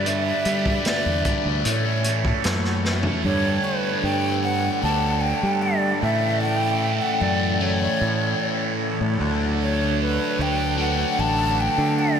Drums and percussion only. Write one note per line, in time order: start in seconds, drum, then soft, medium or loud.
0.06 closed hi-hat medium
0.45 closed hi-hat medium
0.66 kick medium
0.85 snare medium
0.85 closed hi-hat medium
1.25 kick medium
1.25 closed hi-hat medium
1.65 closed hi-hat medium
2.04 closed hi-hat medium
2.25 kick medium
2.44 snare loud
2.44 closed hi-hat medium
2.64 snare soft
2.85 snare medium
3.03 floor tom medium